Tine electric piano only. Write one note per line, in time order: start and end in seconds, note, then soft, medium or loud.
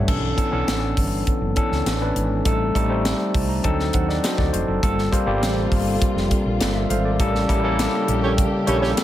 0.00 0.10 G3 medium
0.00 0.10 A3 medium
0.00 0.08 C#4 medium
0.00 0.10 E4 medium
0.00 0.22 G4 soft
0.00 0.08 A4 medium
0.00 0.22 C#5 medium
0.00 0.11 E5 medium
0.00 0.11 F#5 medium
0.00 0.11 G5 medium
0.00 0.10 A5 medium
0.07 0.27 E3 medium
0.07 0.27 B3 medium
0.07 0.27 C#4 medium
0.07 0.27 D4 medium
0.07 0.27 A4 medium
0.37 0.47 E3 medium
0.37 0.47 B3 medium
0.37 0.47 C#4 medium
0.37 0.47 D4 medium
0.37 0.47 A4 medium
0.52 1.18 E3 medium
0.52 1.19 B3 medium
0.52 1.19 C#4 medium
0.52 1.19 D4 medium
0.52 1.19 A4 medium
1.56 1.85 E3 medium
1.56 1.85 B3 medium
1.56 1.85 C#4 medium
1.56 1.85 D4 medium
1.56 1.85 A4 medium
2.00 2.29 E3 medium
2.00 2.29 B3 medium
2.00 2.29 C#4 medium
2.00 2.30 D4 medium
2.00 2.30 B4 medium
2.45 2.64 G3 medium
2.45 2.64 A3 medium
2.45 2.64 C4 medium
2.45 2.65 D#4 medium
2.45 2.65 A4 medium
2.75 2.85 G3 medium
2.75 2.85 A3 medium
2.75 2.85 C4 medium
2.75 2.85 D#4 medium
2.75 2.85 A4 medium
2.89 3.56 G3 medium
2.89 3.56 A3 medium
2.89 3.56 C4 medium
2.89 3.56 D#4 medium
2.89 3.56 C5 medium
3.34 3.48 A5 medium
3.49 3.63 A#5 medium
3.63 3.88 F#3 medium
3.63 3.88 C4 medium
3.63 3.88 D4 medium
3.63 3.88 D#4 medium
3.63 3.88 A4 medium
3.63 3.92 A5 medium
3.94 4.08 C5 medium
3.94 4.08 F#5 medium
4.09 4.23 A4 medium
4.09 4.23 D5 medium
4.09 4.22 D#5 medium
4.23 4.38 F#4 medium
4.23 4.38 C5 medium
4.23 4.79 D#5 medium
4.38 4.53 A4 medium
4.38 4.52 D5 medium
4.53 4.67 F#4 medium
4.53 4.67 C5 medium
4.68 4.97 D#4 medium
4.68 4.82 A4 medium
4.82 5.01 G3 medium
4.82 5.01 A#3 medium
4.82 5.02 C4 medium
4.82 5.02 F4 medium
4.82 5.02 A4 loud
5.12 5.21 G3 medium
5.12 5.22 A#3 medium
5.12 5.22 C4 medium
5.12 5.22 F4 medium
5.12 5.22 C5 medium
5.26 5.93 G3 medium
5.26 5.93 A#3 medium
5.26 5.93 C4 medium
5.26 5.93 F4 medium
5.26 5.93 G4 medium
6.60 6.75 A4 medium
6.60 6.74 D5 medium
6.75 6.90 A#4 medium
6.75 6.89 E5 medium
6.90 7.04 C5 medium
6.90 7.04 F5 medium
7.05 7.19 A4 medium
7.05 7.33 D5 medium
7.19 7.38 G3 medium
7.19 7.38 A#3 medium
7.19 7.39 C#4 medium
7.19 7.39 E4 medium
7.19 7.39 A4 medium
7.49 7.59 G3 medium
7.49 7.59 A#3 medium
7.49 7.59 C#4 medium
7.49 7.59 E4 medium
7.49 7.59 A4 medium
7.63 8.30 G3 medium
7.63 8.30 A#3 medium
7.63 8.30 C#4 medium
7.63 8.30 E4 medium
7.63 8.30 A4 medium
8.67 8.96 G3 medium
8.67 8.96 A#3 medium
8.67 8.96 C#4 medium
8.67 8.96 E4 medium
8.67 8.96 A4 medium